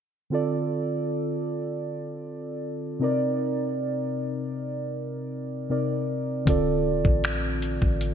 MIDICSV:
0, 0, Header, 1, 4, 480
1, 0, Start_track
1, 0, Tempo, 769231
1, 198, Time_signature, 4, 2, 24, 8
1, 5079, End_track
2, 0, Start_track
2, 0, Title_t, "Synth keys"
2, 0, Program_c, 0, 88
2, 189, Note_on_c, 0, 50, 63
2, 195, Note_on_c, 0, 60, 56
2, 202, Note_on_c, 0, 65, 60
2, 209, Note_on_c, 0, 69, 60
2, 215, Note_on_c, 0, 74, 70
2, 318, Control_c, 0, 64, 127
2, 1848, Note_off_c, 0, 50, 0
2, 1852, Note_off_c, 0, 60, 0
2, 1855, Note_off_c, 0, 65, 0
2, 1858, Note_off_c, 0, 69, 0
2, 1862, Note_off_c, 0, 74, 0
2, 1868, Note_on_c, 0, 48, 69
2, 1875, Note_on_c, 0, 60, 61
2, 1882, Note_on_c, 0, 63, 63
2, 1887, Control_c, 0, 64, 0
2, 1888, Note_on_c, 0, 70, 67
2, 1895, Note_on_c, 0, 74, 72
2, 1991, Control_c, 0, 64, 127
2, 3528, Note_off_c, 0, 48, 0
2, 3532, Note_off_c, 0, 60, 0
2, 3535, Note_off_c, 0, 63, 0
2, 3538, Note_off_c, 0, 70, 0
2, 3542, Note_off_c, 0, 74, 0
2, 3554, Note_on_c, 0, 48, 56
2, 3557, Note_on_c, 0, 60, 51
2, 3561, Note_on_c, 0, 63, 47
2, 3564, Note_on_c, 0, 70, 49
2, 3568, Note_on_c, 0, 74, 57
2, 4027, Note_off_c, 0, 60, 0
2, 4027, Note_on_c, 0, 50, 71
2, 4035, Note_on_c, 0, 60, 62
2, 4036, Note_off_c, 0, 48, 0
2, 4039, Note_off_c, 0, 63, 0
2, 4041, Note_off_c, 0, 70, 0
2, 4041, Note_on_c, 0, 65, 62
2, 4043, Note_off_c, 0, 74, 0
2, 4046, Control_c, 0, 64, 0
2, 4048, Note_on_c, 0, 69, 66
2, 4054, Note_on_c, 0, 74, 77
2, 4154, Control_c, 0, 64, 127
2, 4980, Note_off_c, 0, 65, 0
2, 4984, Note_off_c, 0, 69, 0
2, 4987, Note_off_c, 0, 74, 0
2, 5079, Note_off_c, 0, 50, 0
2, 5079, Note_off_c, 0, 60, 0
2, 5079, End_track
3, 0, Start_track
3, 0, Title_t, "808-style bass"
3, 0, Program_c, 1, 38
3, 4039, Note_on_c, 1, 26, 99
3, 4280, Note_on_c, 1, 27, 99
3, 4289, Note_off_c, 1, 26, 0
3, 4393, Note_off_c, 1, 27, 0
3, 4400, Note_on_c, 1, 33, 101
3, 4860, Note_off_c, 1, 33, 0
3, 4880, Note_on_c, 1, 33, 94
3, 5079, Note_off_c, 1, 33, 0
3, 5079, End_track
4, 0, Start_track
4, 0, Title_t, "Drums"
4, 4038, Note_on_c, 9, 36, 100
4, 4038, Note_on_c, 9, 42, 70
4, 4100, Note_off_c, 9, 36, 0
4, 4100, Note_off_c, 9, 42, 0
4, 4398, Note_on_c, 9, 36, 95
4, 4461, Note_off_c, 9, 36, 0
4, 4517, Note_on_c, 9, 42, 67
4, 4522, Note_on_c, 9, 26, 104
4, 4580, Note_off_c, 9, 42, 0
4, 4585, Note_off_c, 9, 26, 0
4, 4757, Note_on_c, 9, 42, 64
4, 4820, Note_off_c, 9, 42, 0
4, 4878, Note_on_c, 9, 36, 88
4, 4941, Note_off_c, 9, 36, 0
4, 4998, Note_on_c, 9, 42, 68
4, 5060, Note_off_c, 9, 42, 0
4, 5079, End_track
0, 0, End_of_file